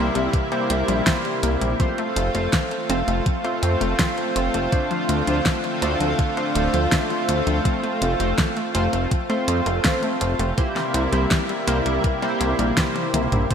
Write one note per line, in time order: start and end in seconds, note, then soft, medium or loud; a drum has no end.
0.00 0.10 C2 loud
0.00 1.77 C3 medium
0.00 1.77 G3 medium
0.00 0.13 A#3 loud
0.00 1.77 A#3 medium
0.00 1.77 E4 loud
0.15 0.29 C2 medium
0.15 0.22 G3 medium
0.15 closed hi-hat medium
0.33 0.44 E3 medium
0.33 kick loud
0.33 closed hi-hat medium
0.52 0.58 G3 loud
0.52 1.02 A#3 medium
0.52 1.02 E4 medium
0.52 1.02 G4 medium
0.52 1.02 C5 loud
0.52 closed hi-hat soft
0.70 0.83 C2 medium
0.70 0.86 A#3 medium
0.70 closed hi-hat medium
0.88 1.02 A#1 medium
0.88 0.99 G3 medium
0.88 closed hi-hat medium
1.07 1.13 E3 medium
1.07 1.75 A#3 medium
1.07 1.75 E4 medium
1.07 1.75 G4 medium
1.07 1.75 C5 medium
1.07 kick loud
1.07 snare loud
1.07 closed hi-hat medium
1.25 1.36 G3 medium
1.25 closed hi-hat soft
1.43 1.57 C2 medium
1.43 1.60 A#3 medium
1.43 closed hi-hat loud
1.61 1.75 A#1 medium
1.61 1.72 G3 medium
1.61 closed hi-hat medium
1.80 1.91 F3 medium
1.80 10.54 A3 medium
1.80 2.30 A3 medium
1.80 10.54 C4 medium
1.80 2.30 C4 medium
1.80 10.54 F4 medium
1.80 2.30 F4 medium
1.80 2.30 C5 medium
1.80 kick loud
1.80 closed hi-hat soft
1.98 2.05 A3 loud
1.98 closed hi-hat soft
2.16 2.30 F1 loud
2.16 2.23 C4 medium
2.16 closed hi-hat medium
2.35 2.48 F1 medium
2.35 2.51 A3 medium
2.35 2.45 A3 medium
2.35 2.45 C4 medium
2.35 2.45 F4 medium
2.35 2.45 C5 medium
2.35 closed hi-hat medium
2.53 2.64 F3 medium
2.53 kick loud
2.53 snare loud
2.53 closed hi-hat soft
2.71 2.82 A3 medium
2.71 closed hi-hat soft
2.89 3.03 F1 medium
2.89 3.00 A3 loud
2.89 3.06 C4 loud
2.89 3.00 C4 medium
2.89 3.00 F4 medium
2.89 3.00 C5 loud
2.89 closed hi-hat medium
3.08 3.21 F1 medium
3.08 3.14 A3 medium
3.08 closed hi-hat medium
3.26 3.37 F3 medium
3.26 kick loud
3.26 closed hi-hat medium
3.44 3.51 A3 loud
3.44 3.95 A3 medium
3.44 3.95 C4 medium
3.44 3.95 F4 medium
3.44 3.95 C5 loud
3.44 closed hi-hat soft
3.63 3.76 F2 medium
3.63 3.79 C4 medium
3.63 closed hi-hat medium
3.81 3.94 F1 medium
3.81 3.92 A3 medium
3.81 closed hi-hat medium
3.99 4.06 F3 medium
3.99 4.68 A3 medium
3.99 4.68 C4 medium
3.99 4.68 F4 medium
3.99 4.68 C5 medium
3.99 kick loud
3.99 snare loud
3.99 closed hi-hat medium
4.18 4.29 A3 medium
4.18 closed hi-hat soft
4.36 4.49 F1 loud
4.36 4.52 C4 medium
4.36 closed hi-hat medium
4.54 4.68 F1 medium
4.54 4.65 A3 medium
4.54 closed hi-hat soft
4.72 4.83 D3 medium
4.72 7.62 D3 medium
4.72 5.23 A3 medium
4.72 5.23 D4 medium
4.72 5.23 F4 medium
4.72 5.23 C5 medium
4.72 kick loud
4.72 closed hi-hat medium
4.91 4.97 F3 loud
4.91 closed hi-hat soft
5.09 5.22 D2 medium
5.09 5.16 A3 medium
5.09 closed hi-hat medium
5.27 5.41 D2 medium
5.27 5.44 F3 medium
5.27 5.37 A3 medium
5.27 5.37 D4 medium
5.27 5.37 F4 medium
5.27 5.37 C5 medium
5.27 closed hi-hat medium
5.46 5.57 D3 medium
5.46 kick loud
5.46 snare loud
5.46 closed hi-hat medium
5.64 5.75 F3 medium
5.64 closed hi-hat soft
5.82 5.96 D2 loud
5.82 5.99 A3 loud
5.82 5.92 A3 loud
5.82 5.92 D4 medium
5.82 5.92 F4 medium
5.82 5.92 C5 loud
5.82 closed hi-hat medium
6.00 6.14 D2 medium
6.00 6.07 F3 medium
6.00 closed hi-hat medium
6.19 6.30 D3 medium
6.19 kick loud
6.19 closed hi-hat medium
6.37 6.44 F3 loud
6.37 6.88 A3 medium
6.37 6.88 D4 medium
6.37 6.88 F4 medium
6.37 6.88 C5 loud
6.37 closed hi-hat soft
6.55 6.69 D1 medium
6.55 6.72 A3 medium
6.55 closed hi-hat medium
6.74 6.87 D2 medium
6.74 6.85 F3 medium
6.74 closed hi-hat soft
6.92 6.99 D3 medium
6.92 7.61 A3 medium
6.92 7.61 D4 medium
6.92 7.61 F4 medium
6.92 7.61 C5 medium
6.92 kick loud
6.92 snare loud
6.92 closed hi-hat medium
7.10 7.21 F3 medium
7.10 closed hi-hat soft
7.28 7.42 D2 medium
7.28 7.45 A3 medium
7.28 closed hi-hat medium
7.47 7.60 D2 medium
7.47 7.58 F3 medium
7.47 closed hi-hat medium
7.65 7.76 F3 medium
7.65 8.16 A3 medium
7.65 8.16 C4 medium
7.65 8.16 F4 medium
7.65 8.16 C5 medium
7.65 kick loud
7.65 closed hi-hat medium
7.83 7.90 A3 loud
7.83 closed hi-hat soft
8.02 8.15 F1 loud
8.02 8.08 C4 medium
8.02 closed hi-hat medium
8.20 8.33 F1 medium
8.20 8.36 A3 medium
8.20 8.30 A3 medium
8.20 8.30 C4 medium
8.20 8.30 F4 medium
8.20 8.30 C5 medium
8.20 closed hi-hat medium
8.38 8.49 F3 medium
8.38 kick loud
8.38 snare loud
8.38 closed hi-hat medium
8.56 8.67 A3 medium
8.56 closed hi-hat soft
8.75 8.88 F1 medium
8.75 8.85 A3 loud
8.75 8.91 C4 loud
8.75 8.85 C4 medium
8.75 8.85 F4 medium
8.75 8.85 C5 loud
8.75 closed hi-hat medium
8.93 9.07 F1 medium
8.93 9.00 A3 medium
8.93 closed hi-hat medium
9.11 9.22 F3 medium
9.11 kick loud
9.11 closed hi-hat medium
9.30 9.36 A3 loud
9.30 9.80 A3 medium
9.30 9.80 C4 medium
9.30 9.80 F4 medium
9.30 9.80 C5 loud
9.30 closed hi-hat soft
9.48 9.61 F2 medium
9.48 9.64 C4 medium
9.48 closed hi-hat medium
9.66 9.80 F1 medium
9.66 9.77 A3 medium
9.66 closed hi-hat medium
9.84 9.91 F3 medium
9.84 10.53 A3 medium
9.84 10.53 C4 medium
9.84 10.53 F4 medium
9.84 10.53 C5 medium
9.84 kick loud
9.84 snare loud
9.84 closed hi-hat medium
10.03 10.14 A3 medium
10.03 closed hi-hat soft
10.21 10.35 F1 loud
10.21 10.38 C4 medium
10.21 closed hi-hat medium
10.39 10.53 F1 medium
10.39 10.50 A3 medium
10.39 closed hi-hat medium
10.58 13.48 C3 medium
10.58 10.69 E3 medium
10.58 13.48 G3 medium
10.58 11.08 A#3 medium
10.58 13.48 A#3 medium
10.58 11.08 E4 medium
10.58 13.48 E4 loud
10.58 11.08 G4 medium
10.58 11.08 C5 medium
10.58 kick loud
10.58 closed hi-hat medium
10.76 10.83 G3 loud
10.76 snare soft
10.76 closed hi-hat soft
10.94 11.08 C2 loud
10.94 11.01 A#3 medium
10.94 closed hi-hat medium
11.13 11.26 C2 medium
11.13 11.29 G3 medium
11.13 11.23 A#3 medium
11.13 11.23 E4 medium
11.13 11.23 G4 medium
11.13 11.23 C5 medium
11.13 closed hi-hat medium
11.31 11.42 E3 medium
11.31 kick loud
11.31 snare loud
11.31 closed hi-hat medium
11.49 11.60 G3 medium
11.49 closed hi-hat soft
11.67 11.81 C2 loud
11.67 11.84 A#3 loud
11.67 11.78 A#3 loud
11.67 11.78 E4 medium
11.67 11.78 G4 medium
11.67 11.78 C5 loud
11.67 closed hi-hat loud
11.86 11.99 C2 medium
11.86 11.92 G3 medium
11.86 closed hi-hat medium
12.04 12.15 E3 medium
12.04 kick loud
12.04 closed hi-hat medium
12.22 12.29 G3 loud
12.22 12.73 A#3 medium
12.22 12.73 E4 medium
12.22 12.73 G4 medium
12.22 12.73 C5 loud
12.22 closed hi-hat soft
12.41 12.54 C2 medium
12.41 12.57 A#3 medium
12.41 closed hi-hat medium
12.59 12.72 A#1 medium
12.59 12.70 G3 medium
12.59 closed hi-hat medium
12.77 12.84 E3 medium
12.77 13.46 A#3 medium
12.77 13.46 E4 medium
12.77 13.46 G4 medium
12.77 13.46 C5 medium
12.77 kick loud
12.77 snare loud
12.77 closed hi-hat medium
12.95 13.06 G3 medium
12.95 closed hi-hat soft
12.95 high tom medium
13.14 13.27 C2 medium
13.14 13.30 A#3 medium
13.14 closed hi-hat loud
13.14 mid tom medium
13.32 13.46 A#1 medium
13.32 13.43 G3 medium
13.32 closed hi-hat medium
13.32 mid tom medium
13.50 13.54 F3 medium
13.50 13.54 A3 medium
13.50 13.54 C4 medium
13.50 13.54 F4 medium
13.50 13.54 C5 medium
13.50 kick loud
13.50 closed hi-hat medium